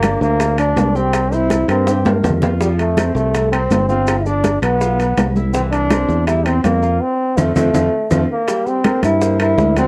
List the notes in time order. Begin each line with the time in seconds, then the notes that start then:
Already playing: G1 A#3
0.03 D4 D5, high bongo, high conga, high timbale, low timbale, claves, maracas
0.21 D2 A#3, high bongo, high conga, maracas
0.40 A#3 A#4, high bongo, high conga, high timbale, maracas
0.58 D4 D5, high conga, high timbale, claves, maracas
0.76 C2, high bongo, low bongo, high conga, high timbale, low timbale, maracas
0.95 C4 G4 G5, high bongo, high conga, maracas
1.13 high bongo, high conga, high timbale, claves, maracas
1.32 C4 E4 C5, high bongo, high conga, maracas
1.50 high bongo, high conga, high timbale, low timbale, maracas
1.68 G2 A#3 C4 A#4, high bongo, high conga, high timbale, claves, maracas
1.87 G4 G5, high bongo, high conga, high timbale, maracas
2.05 A#3 A#4, high conga, low timbale, maracas
2.23 F2, high bongo, low bongo, low timbale, claves, maracas
2.30 low conga
2.42 F4 F5, high bongo, low conga, low timbale, maracas
2.61 F3 G3 F4, high bongo, high conga, maracas
2.79 A3, high bongo, high conga, high timbale, maracas
2.97 C4 C5, high bongo, high conga, high timbale, low timbale, claves, maracas
3.15 C2 A3, high bongo, high conga, maracas
3.34 A3 A4, high bongo, high conga, high timbale, maracas
3.52 C4 C5, high conga, high timbale, claves, maracas
3.70 G1, high bongo, low bongo, high conga, high timbale, low timbale, maracas
3.89 C4 F4 F5, high bongo, high conga, maracas
4.07 high bongo, high conga, high timbale, claves, maracas
4.19 E4
4.25 D4 D5, high bongo, high conga, maracas
4.44 high bongo, high conga, high timbale, low timbale, maracas
4.62 B1 B3 B4, high bongo, high conga, high timbale, claves, maracas
4.80 F4 F5, high bongo, high conga, maracas
4.99 B3 B4, high conga, high timbale, maracas
5.17 C2, high bongo, low bongo, high conga, high timbale, low timbale, claves, maracas
5.36 E4 E5, high bongo, high conga, maracas
5.53 E3 C4 E4, high bongo, maracas
5.72 D4, high bongo, high conga, high timbale, maracas
5.90 C4 C5, high bongo, high conga, high timbale, low timbale, claves, maracas
6.08 E2, high bongo, high conga, maracas
6.27 G3 E4 G4, high bongo, high conga, high timbale, maracas
6.46 C4 C5, high conga, high timbale, claves, maracas
6.64 F2 A#3, high bongo, low bongo, high conga, high timbale, low timbale, maracas
6.83 F4 F5, high bongo, high conga, maracas
7.01 C4
7.37 F2 A3 C4 F4 A4, low bongo, low conga, high timbale, claves, maracas
7.56 F2 A3 C4 F4 A4, low bongo, low conga, high timbale, claves, maracas
7.73 F2 C4 F4 A4, low bongo, low conga, high timbale, claves, maracas
8.11 F2 A3 C4 F4 A4, low bongo, low conga, high timbale, claves, maracas
8.32 A#3
8.48 G3 G4 G5, high bongo, high conga, high timbale, maracas
8.66 C4, high bongo, high conga, maracas
8.84 A#3 A#4 C5, high bongo, high conga, high timbale, claves, maracas
9.03 G2 E4, high conga, high timbale, maracas
9.21 A#3 A#4 C5, high bongo, high conga, maracas
9.39 A#3 E4 A#4 C5, high bongo, high conga, high timbale, claves, maracas
9.58 D2, high bongo, low bongo, high conga, maracas
9.76 F#3 C4 F#4 F#5, high bongo, high conga, high timbale, maracas